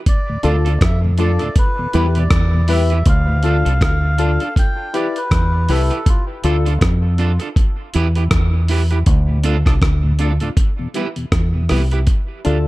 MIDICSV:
0, 0, Header, 1, 7, 480
1, 0, Start_track
1, 0, Tempo, 750939
1, 40, Time_signature, 4, 2, 24, 8
1, 8103, End_track
2, 0, Start_track
2, 0, Title_t, "Melodica"
2, 0, Program_c, 0, 22
2, 54, Note_on_c, 0, 74, 97
2, 271, Note_off_c, 0, 74, 0
2, 297, Note_on_c, 0, 74, 82
2, 535, Note_off_c, 0, 74, 0
2, 537, Note_on_c, 0, 76, 86
2, 641, Note_off_c, 0, 76, 0
2, 770, Note_on_c, 0, 74, 94
2, 988, Note_off_c, 0, 74, 0
2, 1012, Note_on_c, 0, 71, 94
2, 1247, Note_off_c, 0, 71, 0
2, 1257, Note_on_c, 0, 71, 89
2, 1392, Note_off_c, 0, 71, 0
2, 1400, Note_on_c, 0, 74, 93
2, 1738, Note_on_c, 0, 76, 96
2, 1739, Note_off_c, 0, 74, 0
2, 1952, Note_off_c, 0, 76, 0
2, 1974, Note_on_c, 0, 77, 110
2, 2448, Note_off_c, 0, 77, 0
2, 2457, Note_on_c, 0, 77, 108
2, 2902, Note_off_c, 0, 77, 0
2, 2932, Note_on_c, 0, 79, 102
2, 3172, Note_off_c, 0, 79, 0
2, 3172, Note_on_c, 0, 74, 94
2, 3307, Note_on_c, 0, 71, 100
2, 3309, Note_off_c, 0, 74, 0
2, 3651, Note_on_c, 0, 69, 90
2, 3653, Note_off_c, 0, 71, 0
2, 3891, Note_off_c, 0, 69, 0
2, 3891, Note_on_c, 0, 65, 91
2, 3996, Note_off_c, 0, 65, 0
2, 8103, End_track
3, 0, Start_track
3, 0, Title_t, "Synth stab"
3, 0, Program_c, 1, 62
3, 276, Note_on_c, 1, 62, 92
3, 279, Note_on_c, 1, 65, 83
3, 285, Note_on_c, 1, 69, 109
3, 432, Note_off_c, 1, 62, 0
3, 434, Note_off_c, 1, 65, 0
3, 437, Note_off_c, 1, 69, 0
3, 757, Note_on_c, 1, 62, 97
3, 760, Note_on_c, 1, 65, 84
3, 764, Note_on_c, 1, 69, 105
3, 913, Note_off_c, 1, 62, 0
3, 914, Note_off_c, 1, 65, 0
3, 917, Note_off_c, 1, 69, 0
3, 1238, Note_on_c, 1, 64, 88
3, 1242, Note_on_c, 1, 67, 82
3, 1246, Note_on_c, 1, 71, 104
3, 1372, Note_off_c, 1, 71, 0
3, 1374, Note_off_c, 1, 67, 0
3, 1380, Note_on_c, 1, 71, 46
3, 1381, Note_on_c, 1, 67, 42
3, 1393, Note_off_c, 1, 64, 0
3, 1420, Note_off_c, 1, 67, 0
3, 1420, Note_off_c, 1, 71, 0
3, 1716, Note_on_c, 1, 64, 91
3, 1720, Note_on_c, 1, 67, 84
3, 1724, Note_on_c, 1, 71, 101
3, 1872, Note_off_c, 1, 64, 0
3, 1874, Note_off_c, 1, 67, 0
3, 1876, Note_off_c, 1, 71, 0
3, 2195, Note_on_c, 1, 62, 96
3, 2199, Note_on_c, 1, 65, 85
3, 2203, Note_on_c, 1, 69, 101
3, 2351, Note_off_c, 1, 62, 0
3, 2353, Note_off_c, 1, 65, 0
3, 2356, Note_off_c, 1, 69, 0
3, 2675, Note_on_c, 1, 62, 96
3, 2680, Note_on_c, 1, 65, 86
3, 2682, Note_on_c, 1, 69, 107
3, 2831, Note_off_c, 1, 62, 0
3, 2834, Note_off_c, 1, 65, 0
3, 2835, Note_off_c, 1, 69, 0
3, 3155, Note_on_c, 1, 64, 93
3, 3160, Note_on_c, 1, 67, 82
3, 3162, Note_on_c, 1, 71, 107
3, 3294, Note_off_c, 1, 67, 0
3, 3294, Note_off_c, 1, 71, 0
3, 3301, Note_on_c, 1, 67, 42
3, 3302, Note_on_c, 1, 71, 44
3, 3311, Note_off_c, 1, 64, 0
3, 3340, Note_off_c, 1, 67, 0
3, 3340, Note_off_c, 1, 71, 0
3, 3638, Note_on_c, 1, 64, 90
3, 3642, Note_on_c, 1, 67, 82
3, 3647, Note_on_c, 1, 71, 109
3, 3792, Note_off_c, 1, 64, 0
3, 3795, Note_off_c, 1, 67, 0
3, 3797, Note_off_c, 1, 71, 0
3, 4117, Note_on_c, 1, 62, 92
3, 4120, Note_on_c, 1, 65, 90
3, 4125, Note_on_c, 1, 69, 106
3, 4272, Note_off_c, 1, 62, 0
3, 4274, Note_off_c, 1, 65, 0
3, 4276, Note_off_c, 1, 69, 0
3, 7956, Note_on_c, 1, 62, 91
3, 7961, Note_on_c, 1, 65, 83
3, 7964, Note_on_c, 1, 69, 100
3, 8103, Note_off_c, 1, 62, 0
3, 8103, Note_off_c, 1, 65, 0
3, 8103, Note_off_c, 1, 69, 0
3, 8103, End_track
4, 0, Start_track
4, 0, Title_t, "Clean electric guitar"
4, 0, Program_c, 2, 27
4, 278, Note_on_c, 2, 62, 86
4, 282, Note_on_c, 2, 65, 87
4, 287, Note_on_c, 2, 69, 86
4, 353, Note_off_c, 2, 62, 0
4, 356, Note_off_c, 2, 65, 0
4, 358, Note_off_c, 2, 69, 0
4, 416, Note_on_c, 2, 69, 66
4, 425, Note_on_c, 2, 65, 57
4, 427, Note_on_c, 2, 62, 53
4, 459, Note_off_c, 2, 69, 0
4, 464, Note_off_c, 2, 65, 0
4, 465, Note_off_c, 2, 62, 0
4, 757, Note_on_c, 2, 62, 73
4, 764, Note_on_c, 2, 65, 77
4, 767, Note_on_c, 2, 69, 74
4, 833, Note_off_c, 2, 62, 0
4, 836, Note_off_c, 2, 65, 0
4, 838, Note_off_c, 2, 69, 0
4, 898, Note_on_c, 2, 69, 61
4, 903, Note_on_c, 2, 65, 54
4, 908, Note_on_c, 2, 62, 51
4, 940, Note_off_c, 2, 69, 0
4, 943, Note_off_c, 2, 65, 0
4, 945, Note_off_c, 2, 62, 0
4, 1238, Note_on_c, 2, 64, 79
4, 1244, Note_on_c, 2, 67, 86
4, 1249, Note_on_c, 2, 71, 84
4, 1313, Note_off_c, 2, 64, 0
4, 1316, Note_off_c, 2, 67, 0
4, 1319, Note_off_c, 2, 71, 0
4, 1378, Note_on_c, 2, 71, 53
4, 1385, Note_on_c, 2, 67, 53
4, 1390, Note_on_c, 2, 64, 45
4, 1421, Note_off_c, 2, 71, 0
4, 1424, Note_off_c, 2, 67, 0
4, 1426, Note_off_c, 2, 64, 0
4, 1717, Note_on_c, 2, 64, 81
4, 1723, Note_on_c, 2, 67, 84
4, 1727, Note_on_c, 2, 71, 80
4, 1793, Note_off_c, 2, 64, 0
4, 1795, Note_off_c, 2, 67, 0
4, 1798, Note_off_c, 2, 71, 0
4, 1856, Note_on_c, 2, 71, 74
4, 1864, Note_on_c, 2, 67, 58
4, 1868, Note_on_c, 2, 64, 59
4, 1899, Note_off_c, 2, 71, 0
4, 1903, Note_off_c, 2, 67, 0
4, 1905, Note_off_c, 2, 64, 0
4, 2200, Note_on_c, 2, 62, 82
4, 2205, Note_on_c, 2, 65, 74
4, 2211, Note_on_c, 2, 69, 84
4, 2274, Note_off_c, 2, 62, 0
4, 2277, Note_off_c, 2, 65, 0
4, 2279, Note_off_c, 2, 69, 0
4, 2335, Note_on_c, 2, 69, 60
4, 2342, Note_on_c, 2, 65, 54
4, 2346, Note_on_c, 2, 62, 53
4, 2378, Note_off_c, 2, 69, 0
4, 2382, Note_off_c, 2, 65, 0
4, 2384, Note_off_c, 2, 62, 0
4, 2672, Note_on_c, 2, 62, 79
4, 2679, Note_on_c, 2, 65, 77
4, 2681, Note_on_c, 2, 69, 84
4, 2750, Note_off_c, 2, 62, 0
4, 2753, Note_off_c, 2, 65, 0
4, 2754, Note_off_c, 2, 69, 0
4, 2817, Note_on_c, 2, 69, 58
4, 2824, Note_on_c, 2, 65, 52
4, 2828, Note_on_c, 2, 62, 50
4, 2859, Note_off_c, 2, 69, 0
4, 2863, Note_off_c, 2, 65, 0
4, 2865, Note_off_c, 2, 62, 0
4, 3159, Note_on_c, 2, 64, 75
4, 3165, Note_on_c, 2, 67, 80
4, 3170, Note_on_c, 2, 71, 84
4, 3233, Note_off_c, 2, 64, 0
4, 3236, Note_off_c, 2, 67, 0
4, 3239, Note_off_c, 2, 71, 0
4, 3639, Note_on_c, 2, 64, 79
4, 3642, Note_on_c, 2, 67, 84
4, 3647, Note_on_c, 2, 71, 90
4, 3713, Note_off_c, 2, 64, 0
4, 3715, Note_off_c, 2, 67, 0
4, 3717, Note_off_c, 2, 71, 0
4, 3774, Note_on_c, 2, 71, 65
4, 3779, Note_on_c, 2, 67, 60
4, 3782, Note_on_c, 2, 64, 53
4, 3818, Note_off_c, 2, 71, 0
4, 3820, Note_off_c, 2, 67, 0
4, 3822, Note_off_c, 2, 64, 0
4, 4115, Note_on_c, 2, 62, 81
4, 4122, Note_on_c, 2, 65, 94
4, 4125, Note_on_c, 2, 69, 95
4, 4191, Note_off_c, 2, 62, 0
4, 4194, Note_off_c, 2, 65, 0
4, 4196, Note_off_c, 2, 69, 0
4, 4254, Note_on_c, 2, 69, 58
4, 4258, Note_on_c, 2, 65, 54
4, 4263, Note_on_c, 2, 62, 52
4, 4298, Note_off_c, 2, 69, 0
4, 4300, Note_off_c, 2, 65, 0
4, 4302, Note_off_c, 2, 62, 0
4, 4593, Note_on_c, 2, 62, 86
4, 4599, Note_on_c, 2, 65, 79
4, 4603, Note_on_c, 2, 69, 84
4, 4670, Note_off_c, 2, 62, 0
4, 4673, Note_off_c, 2, 65, 0
4, 4675, Note_off_c, 2, 69, 0
4, 4737, Note_on_c, 2, 69, 64
4, 4744, Note_on_c, 2, 65, 51
4, 4747, Note_on_c, 2, 62, 52
4, 4779, Note_off_c, 2, 69, 0
4, 4782, Note_off_c, 2, 65, 0
4, 4784, Note_off_c, 2, 62, 0
4, 5077, Note_on_c, 2, 64, 80
4, 5085, Note_on_c, 2, 67, 92
4, 5087, Note_on_c, 2, 71, 94
4, 5152, Note_off_c, 2, 64, 0
4, 5156, Note_off_c, 2, 67, 0
4, 5157, Note_off_c, 2, 71, 0
4, 5215, Note_on_c, 2, 71, 59
4, 5220, Note_on_c, 2, 67, 57
4, 5225, Note_on_c, 2, 64, 50
4, 5258, Note_off_c, 2, 71, 0
4, 5261, Note_off_c, 2, 67, 0
4, 5263, Note_off_c, 2, 64, 0
4, 5557, Note_on_c, 2, 64, 85
4, 5565, Note_on_c, 2, 67, 85
4, 5568, Note_on_c, 2, 71, 99
4, 5632, Note_off_c, 2, 64, 0
4, 5636, Note_off_c, 2, 67, 0
4, 5638, Note_off_c, 2, 71, 0
4, 5693, Note_on_c, 2, 71, 69
4, 5699, Note_on_c, 2, 67, 65
4, 5702, Note_on_c, 2, 64, 56
4, 5737, Note_off_c, 2, 71, 0
4, 5740, Note_off_c, 2, 67, 0
4, 5742, Note_off_c, 2, 64, 0
4, 6032, Note_on_c, 2, 62, 89
4, 6037, Note_on_c, 2, 65, 95
4, 6042, Note_on_c, 2, 69, 103
4, 6110, Note_off_c, 2, 62, 0
4, 6112, Note_off_c, 2, 65, 0
4, 6115, Note_off_c, 2, 69, 0
4, 6173, Note_on_c, 2, 69, 68
4, 6180, Note_on_c, 2, 65, 54
4, 6186, Note_on_c, 2, 62, 59
4, 6217, Note_off_c, 2, 69, 0
4, 6221, Note_off_c, 2, 65, 0
4, 6224, Note_off_c, 2, 62, 0
4, 6514, Note_on_c, 2, 62, 76
4, 6519, Note_on_c, 2, 65, 86
4, 6526, Note_on_c, 2, 69, 85
4, 6591, Note_off_c, 2, 62, 0
4, 6593, Note_off_c, 2, 65, 0
4, 6596, Note_off_c, 2, 69, 0
4, 6655, Note_on_c, 2, 69, 60
4, 6663, Note_on_c, 2, 65, 58
4, 6666, Note_on_c, 2, 62, 51
4, 6698, Note_off_c, 2, 69, 0
4, 6702, Note_off_c, 2, 65, 0
4, 6704, Note_off_c, 2, 62, 0
4, 7001, Note_on_c, 2, 64, 83
4, 7005, Note_on_c, 2, 67, 88
4, 7010, Note_on_c, 2, 71, 98
4, 7074, Note_off_c, 2, 64, 0
4, 7076, Note_off_c, 2, 67, 0
4, 7078, Note_off_c, 2, 71, 0
4, 7476, Note_on_c, 2, 64, 78
4, 7482, Note_on_c, 2, 67, 84
4, 7485, Note_on_c, 2, 71, 93
4, 7552, Note_off_c, 2, 64, 0
4, 7555, Note_off_c, 2, 67, 0
4, 7556, Note_off_c, 2, 71, 0
4, 7619, Note_on_c, 2, 71, 67
4, 7625, Note_on_c, 2, 67, 65
4, 7628, Note_on_c, 2, 64, 63
4, 7660, Note_off_c, 2, 71, 0
4, 7663, Note_off_c, 2, 67, 0
4, 7665, Note_off_c, 2, 64, 0
4, 7957, Note_on_c, 2, 62, 67
4, 7963, Note_on_c, 2, 65, 73
4, 7970, Note_on_c, 2, 69, 80
4, 8032, Note_off_c, 2, 62, 0
4, 8035, Note_off_c, 2, 65, 0
4, 8039, Note_off_c, 2, 69, 0
4, 8103, End_track
5, 0, Start_track
5, 0, Title_t, "Tonewheel organ"
5, 0, Program_c, 3, 16
5, 187, Note_on_c, 3, 45, 58
5, 188, Note_on_c, 3, 38, 59
5, 242, Note_off_c, 3, 45, 0
5, 243, Note_off_c, 3, 38, 0
5, 283, Note_on_c, 3, 57, 72
5, 288, Note_on_c, 3, 62, 68
5, 289, Note_on_c, 3, 65, 84
5, 363, Note_off_c, 3, 57, 0
5, 366, Note_off_c, 3, 62, 0
5, 366, Note_off_c, 3, 65, 0
5, 667, Note_on_c, 3, 38, 57
5, 668, Note_on_c, 3, 45, 57
5, 722, Note_off_c, 3, 38, 0
5, 722, Note_off_c, 3, 45, 0
5, 761, Note_on_c, 3, 57, 72
5, 764, Note_on_c, 3, 62, 65
5, 766, Note_on_c, 3, 65, 80
5, 842, Note_off_c, 3, 57, 0
5, 844, Note_off_c, 3, 62, 0
5, 845, Note_off_c, 3, 65, 0
5, 904, Note_on_c, 3, 38, 57
5, 904, Note_on_c, 3, 45, 57
5, 960, Note_off_c, 3, 38, 0
5, 960, Note_off_c, 3, 45, 0
5, 1143, Note_on_c, 3, 40, 57
5, 1143, Note_on_c, 3, 47, 59
5, 1200, Note_off_c, 3, 40, 0
5, 1200, Note_off_c, 3, 47, 0
5, 1242, Note_on_c, 3, 55, 67
5, 1244, Note_on_c, 3, 64, 77
5, 1245, Note_on_c, 3, 59, 66
5, 1322, Note_off_c, 3, 55, 0
5, 1324, Note_off_c, 3, 59, 0
5, 1324, Note_off_c, 3, 64, 0
5, 1382, Note_on_c, 3, 40, 55
5, 1383, Note_on_c, 3, 47, 55
5, 1439, Note_off_c, 3, 40, 0
5, 1439, Note_off_c, 3, 47, 0
5, 1622, Note_on_c, 3, 47, 54
5, 1623, Note_on_c, 3, 40, 56
5, 1679, Note_off_c, 3, 40, 0
5, 1679, Note_off_c, 3, 47, 0
5, 1717, Note_on_c, 3, 55, 76
5, 1717, Note_on_c, 3, 59, 67
5, 1720, Note_on_c, 3, 64, 81
5, 1800, Note_off_c, 3, 55, 0
5, 1800, Note_off_c, 3, 59, 0
5, 1802, Note_off_c, 3, 64, 0
5, 2098, Note_on_c, 3, 38, 58
5, 2098, Note_on_c, 3, 45, 56
5, 2157, Note_off_c, 3, 38, 0
5, 2157, Note_off_c, 3, 45, 0
5, 5938, Note_on_c, 3, 38, 58
5, 5940, Note_on_c, 3, 45, 55
5, 5996, Note_off_c, 3, 38, 0
5, 5997, Note_off_c, 3, 45, 0
5, 6035, Note_on_c, 3, 57, 77
5, 6036, Note_on_c, 3, 62, 66
5, 6039, Note_on_c, 3, 65, 80
5, 6118, Note_off_c, 3, 57, 0
5, 6119, Note_off_c, 3, 62, 0
5, 6120, Note_off_c, 3, 65, 0
5, 6416, Note_on_c, 3, 38, 59
5, 6417, Note_on_c, 3, 45, 56
5, 6475, Note_off_c, 3, 38, 0
5, 6476, Note_off_c, 3, 45, 0
5, 6517, Note_on_c, 3, 57, 75
5, 6518, Note_on_c, 3, 62, 67
5, 6520, Note_on_c, 3, 65, 84
5, 6599, Note_off_c, 3, 57, 0
5, 6600, Note_off_c, 3, 62, 0
5, 6601, Note_off_c, 3, 65, 0
5, 6656, Note_on_c, 3, 38, 59
5, 6657, Note_on_c, 3, 45, 55
5, 6715, Note_off_c, 3, 38, 0
5, 6716, Note_off_c, 3, 45, 0
5, 6897, Note_on_c, 3, 47, 55
5, 6898, Note_on_c, 3, 40, 59
5, 6956, Note_off_c, 3, 40, 0
5, 6956, Note_off_c, 3, 47, 0
5, 6992, Note_on_c, 3, 55, 64
5, 6995, Note_on_c, 3, 59, 59
5, 6997, Note_on_c, 3, 64, 75
5, 7077, Note_off_c, 3, 55, 0
5, 7078, Note_off_c, 3, 59, 0
5, 7079, Note_off_c, 3, 64, 0
5, 7134, Note_on_c, 3, 47, 55
5, 7137, Note_on_c, 3, 40, 54
5, 7195, Note_off_c, 3, 47, 0
5, 7196, Note_off_c, 3, 40, 0
5, 7374, Note_on_c, 3, 47, 54
5, 7376, Note_on_c, 3, 40, 55
5, 7435, Note_off_c, 3, 40, 0
5, 7435, Note_off_c, 3, 47, 0
5, 7476, Note_on_c, 3, 55, 70
5, 7477, Note_on_c, 3, 59, 65
5, 7479, Note_on_c, 3, 64, 77
5, 7559, Note_off_c, 3, 55, 0
5, 7559, Note_off_c, 3, 59, 0
5, 7560, Note_off_c, 3, 64, 0
5, 8103, End_track
6, 0, Start_track
6, 0, Title_t, "Fingered electric bass"
6, 0, Program_c, 4, 33
6, 283, Note_on_c, 4, 38, 92
6, 505, Note_off_c, 4, 38, 0
6, 522, Note_on_c, 4, 41, 82
6, 876, Note_off_c, 4, 41, 0
6, 1244, Note_on_c, 4, 40, 90
6, 1465, Note_off_c, 4, 40, 0
6, 1480, Note_on_c, 4, 40, 79
6, 1934, Note_off_c, 4, 40, 0
6, 1959, Note_on_c, 4, 38, 102
6, 2313, Note_off_c, 4, 38, 0
6, 2339, Note_on_c, 4, 36, 84
6, 2432, Note_off_c, 4, 36, 0
6, 2440, Note_on_c, 4, 38, 83
6, 2794, Note_off_c, 4, 38, 0
6, 3399, Note_on_c, 4, 40, 93
6, 3622, Note_off_c, 4, 40, 0
6, 3638, Note_on_c, 4, 36, 95
6, 3769, Note_off_c, 4, 36, 0
6, 4117, Note_on_c, 4, 38, 93
6, 4341, Note_off_c, 4, 38, 0
6, 4358, Note_on_c, 4, 41, 86
6, 4712, Note_off_c, 4, 41, 0
6, 5083, Note_on_c, 4, 40, 91
6, 5304, Note_off_c, 4, 40, 0
6, 5315, Note_on_c, 4, 40, 81
6, 5771, Note_off_c, 4, 40, 0
6, 5797, Note_on_c, 4, 38, 101
6, 6152, Note_off_c, 4, 38, 0
6, 6179, Note_on_c, 4, 36, 88
6, 6272, Note_off_c, 4, 36, 0
6, 6277, Note_on_c, 4, 38, 85
6, 6632, Note_off_c, 4, 38, 0
6, 7239, Note_on_c, 4, 40, 81
6, 7462, Note_off_c, 4, 40, 0
6, 7486, Note_on_c, 4, 36, 93
6, 7706, Note_off_c, 4, 36, 0
6, 7967, Note_on_c, 4, 38, 86
6, 8103, Note_off_c, 4, 38, 0
6, 8103, End_track
7, 0, Start_track
7, 0, Title_t, "Drums"
7, 41, Note_on_c, 9, 36, 105
7, 41, Note_on_c, 9, 42, 89
7, 105, Note_off_c, 9, 36, 0
7, 105, Note_off_c, 9, 42, 0
7, 276, Note_on_c, 9, 42, 68
7, 340, Note_off_c, 9, 42, 0
7, 421, Note_on_c, 9, 42, 52
7, 485, Note_off_c, 9, 42, 0
7, 518, Note_on_c, 9, 36, 104
7, 520, Note_on_c, 9, 42, 72
7, 526, Note_on_c, 9, 37, 109
7, 582, Note_off_c, 9, 36, 0
7, 583, Note_off_c, 9, 42, 0
7, 590, Note_off_c, 9, 37, 0
7, 752, Note_on_c, 9, 42, 69
7, 815, Note_off_c, 9, 42, 0
7, 891, Note_on_c, 9, 42, 51
7, 955, Note_off_c, 9, 42, 0
7, 995, Note_on_c, 9, 42, 76
7, 996, Note_on_c, 9, 36, 108
7, 1059, Note_off_c, 9, 42, 0
7, 1060, Note_off_c, 9, 36, 0
7, 1236, Note_on_c, 9, 42, 73
7, 1300, Note_off_c, 9, 42, 0
7, 1375, Note_on_c, 9, 42, 56
7, 1439, Note_off_c, 9, 42, 0
7, 1473, Note_on_c, 9, 37, 107
7, 1473, Note_on_c, 9, 42, 84
7, 1475, Note_on_c, 9, 36, 106
7, 1537, Note_off_c, 9, 37, 0
7, 1537, Note_off_c, 9, 42, 0
7, 1539, Note_off_c, 9, 36, 0
7, 1712, Note_on_c, 9, 46, 67
7, 1776, Note_off_c, 9, 46, 0
7, 1854, Note_on_c, 9, 42, 46
7, 1918, Note_off_c, 9, 42, 0
7, 1953, Note_on_c, 9, 42, 88
7, 1956, Note_on_c, 9, 36, 107
7, 2017, Note_off_c, 9, 42, 0
7, 2019, Note_off_c, 9, 36, 0
7, 2190, Note_on_c, 9, 42, 69
7, 2254, Note_off_c, 9, 42, 0
7, 2340, Note_on_c, 9, 42, 49
7, 2404, Note_off_c, 9, 42, 0
7, 2436, Note_on_c, 9, 36, 106
7, 2439, Note_on_c, 9, 42, 73
7, 2445, Note_on_c, 9, 37, 112
7, 2500, Note_off_c, 9, 36, 0
7, 2502, Note_off_c, 9, 42, 0
7, 2509, Note_off_c, 9, 37, 0
7, 2675, Note_on_c, 9, 42, 66
7, 2739, Note_off_c, 9, 42, 0
7, 2814, Note_on_c, 9, 42, 53
7, 2878, Note_off_c, 9, 42, 0
7, 2916, Note_on_c, 9, 36, 102
7, 2922, Note_on_c, 9, 42, 77
7, 2980, Note_off_c, 9, 36, 0
7, 2986, Note_off_c, 9, 42, 0
7, 3158, Note_on_c, 9, 42, 76
7, 3222, Note_off_c, 9, 42, 0
7, 3298, Note_on_c, 9, 42, 53
7, 3362, Note_off_c, 9, 42, 0
7, 3395, Note_on_c, 9, 36, 106
7, 3398, Note_on_c, 9, 37, 103
7, 3398, Note_on_c, 9, 42, 86
7, 3459, Note_off_c, 9, 36, 0
7, 3462, Note_off_c, 9, 37, 0
7, 3462, Note_off_c, 9, 42, 0
7, 3634, Note_on_c, 9, 46, 69
7, 3698, Note_off_c, 9, 46, 0
7, 3777, Note_on_c, 9, 42, 46
7, 3841, Note_off_c, 9, 42, 0
7, 3875, Note_on_c, 9, 36, 109
7, 3876, Note_on_c, 9, 42, 90
7, 3939, Note_off_c, 9, 36, 0
7, 3940, Note_off_c, 9, 42, 0
7, 4114, Note_on_c, 9, 42, 70
7, 4178, Note_off_c, 9, 42, 0
7, 4259, Note_on_c, 9, 42, 52
7, 4323, Note_off_c, 9, 42, 0
7, 4355, Note_on_c, 9, 36, 103
7, 4356, Note_on_c, 9, 42, 73
7, 4362, Note_on_c, 9, 37, 108
7, 4419, Note_off_c, 9, 36, 0
7, 4420, Note_off_c, 9, 42, 0
7, 4426, Note_off_c, 9, 37, 0
7, 4591, Note_on_c, 9, 42, 64
7, 4655, Note_off_c, 9, 42, 0
7, 4728, Note_on_c, 9, 42, 53
7, 4792, Note_off_c, 9, 42, 0
7, 4834, Note_on_c, 9, 36, 107
7, 4838, Note_on_c, 9, 42, 78
7, 4898, Note_off_c, 9, 36, 0
7, 4902, Note_off_c, 9, 42, 0
7, 5073, Note_on_c, 9, 42, 74
7, 5136, Note_off_c, 9, 42, 0
7, 5212, Note_on_c, 9, 42, 53
7, 5276, Note_off_c, 9, 42, 0
7, 5311, Note_on_c, 9, 37, 109
7, 5311, Note_on_c, 9, 42, 85
7, 5313, Note_on_c, 9, 36, 104
7, 5375, Note_off_c, 9, 37, 0
7, 5375, Note_off_c, 9, 42, 0
7, 5377, Note_off_c, 9, 36, 0
7, 5551, Note_on_c, 9, 46, 68
7, 5615, Note_off_c, 9, 46, 0
7, 5692, Note_on_c, 9, 42, 44
7, 5756, Note_off_c, 9, 42, 0
7, 5793, Note_on_c, 9, 42, 90
7, 5795, Note_on_c, 9, 36, 112
7, 5856, Note_off_c, 9, 42, 0
7, 5859, Note_off_c, 9, 36, 0
7, 6031, Note_on_c, 9, 42, 71
7, 6095, Note_off_c, 9, 42, 0
7, 6176, Note_on_c, 9, 36, 87
7, 6179, Note_on_c, 9, 42, 51
7, 6182, Note_on_c, 9, 37, 70
7, 6240, Note_off_c, 9, 36, 0
7, 6243, Note_off_c, 9, 42, 0
7, 6245, Note_off_c, 9, 37, 0
7, 6274, Note_on_c, 9, 42, 71
7, 6275, Note_on_c, 9, 36, 100
7, 6280, Note_on_c, 9, 37, 109
7, 6338, Note_off_c, 9, 36, 0
7, 6338, Note_off_c, 9, 42, 0
7, 6344, Note_off_c, 9, 37, 0
7, 6511, Note_on_c, 9, 42, 64
7, 6575, Note_off_c, 9, 42, 0
7, 6650, Note_on_c, 9, 42, 50
7, 6714, Note_off_c, 9, 42, 0
7, 6755, Note_on_c, 9, 36, 107
7, 6757, Note_on_c, 9, 42, 78
7, 6819, Note_off_c, 9, 36, 0
7, 6821, Note_off_c, 9, 42, 0
7, 6995, Note_on_c, 9, 42, 70
7, 7059, Note_off_c, 9, 42, 0
7, 7134, Note_on_c, 9, 42, 53
7, 7198, Note_off_c, 9, 42, 0
7, 7235, Note_on_c, 9, 36, 110
7, 7236, Note_on_c, 9, 37, 108
7, 7236, Note_on_c, 9, 42, 85
7, 7299, Note_off_c, 9, 36, 0
7, 7300, Note_off_c, 9, 37, 0
7, 7300, Note_off_c, 9, 42, 0
7, 7473, Note_on_c, 9, 46, 68
7, 7475, Note_on_c, 9, 37, 66
7, 7537, Note_off_c, 9, 46, 0
7, 7539, Note_off_c, 9, 37, 0
7, 7615, Note_on_c, 9, 42, 44
7, 7679, Note_off_c, 9, 42, 0
7, 7713, Note_on_c, 9, 42, 80
7, 7716, Note_on_c, 9, 36, 100
7, 7777, Note_off_c, 9, 42, 0
7, 7780, Note_off_c, 9, 36, 0
7, 7956, Note_on_c, 9, 42, 64
7, 8020, Note_off_c, 9, 42, 0
7, 8103, End_track
0, 0, End_of_file